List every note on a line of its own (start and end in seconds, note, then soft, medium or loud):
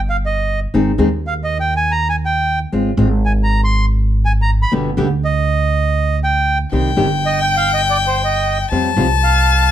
0.00 0.65 G1 medium
0.10 0.17 F5 medium
0.26 0.60 D#5 medium
0.74 0.95 G#1 medium
0.74 0.91 D#3 medium
0.74 0.91 G#3 medium
0.74 0.91 C4 medium
0.74 0.91 D#4 medium
0.74 0.91 G#4 medium
0.98 2.64 D#2 loud
0.98 1.07 D#3 medium
0.98 1.08 G#3 medium
0.98 1.08 C4 medium
0.98 1.08 D#4 medium
0.98 1.08 G#4 medium
1.27 1.34 F5 medium
1.44 1.58 D#5 medium
1.60 1.74 G5 medium
1.76 1.92 G#5 loud
1.92 2.08 A#5 loud
2.09 2.16 G#5 medium
2.25 2.59 G5 medium
2.72 2.94 G#1 medium
2.72 2.90 G#3 medium
2.72 2.90 C4 medium
2.72 2.90 F4 medium
2.97 4.64 G#1 loud
2.97 3.07 G#3 medium
2.97 3.07 C4 medium
2.97 3.07 F4 medium
3.26 3.32 G#5 medium
3.43 3.61 A#5 medium
3.64 3.86 C6 medium
4.25 4.32 G#5 medium
4.42 4.51 A#5 medium
4.62 4.73 B5 loud
4.72 4.94 G1 medium
4.72 4.89 B2 medium
4.72 4.89 D3 medium
4.72 4.89 G3 medium
4.72 4.90 B3 medium
4.72 4.89 G4 medium
4.97 6.64 D2 loud
4.97 5.06 B2 medium
4.97 5.06 D3 medium
4.97 5.07 G3 medium
4.97 5.07 B3 loud
4.97 5.07 G4 medium
5.25 6.20 D#5 medium
6.24 6.58 G5 loud
6.72 6.93 C2 medium
6.72 6.89 C3 medium
6.72 6.89 D#3 medium
6.72 6.89 G3 medium
6.72 6.90 C4 medium
6.72 6.90 G4 medium
6.72 8.68 G5 medium
6.97 8.63 G1 loud
6.97 7.06 C3 medium
6.97 7.06 D#3 medium
6.97 7.06 G3 medium
6.97 7.06 C4 medium
6.97 7.07 G4 medium
7.26 7.40 D#5 medium
7.42 7.56 G5 loud
7.57 7.72 F5 medium
7.74 7.81 D#5 medium
7.90 7.97 D5 medium
8.07 8.22 C5 medium
8.24 8.58 D#5 medium
8.71 8.93 F2 medium
8.71 8.89 F3 medium
8.71 8.89 G3 medium
8.71 8.89 C4 medium
8.71 8.89 F4 medium
8.71 9.71 A5 loud
8.97 9.71 C2 loud
8.97 9.06 F3 medium
8.97 9.06 G3 medium
8.97 9.06 C4 medium
8.97 9.06 F4 medium
9.24 9.71 F5 medium